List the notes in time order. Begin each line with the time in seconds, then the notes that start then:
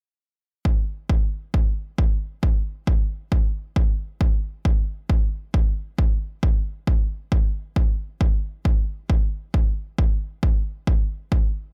0.65 kick
1.10 kick
1.54 kick
1.98 kick
2.43 kick
2.87 kick
3.32 kick
3.76 kick
4.21 kick
4.65 kick
5.10 kick
5.54 kick
5.98 kick
6.43 kick
6.87 kick
7.32 kick
7.76 kick
8.21 kick
8.65 kick
9.10 kick
9.54 kick
9.98 kick
10.43 kick
10.87 kick
11.32 kick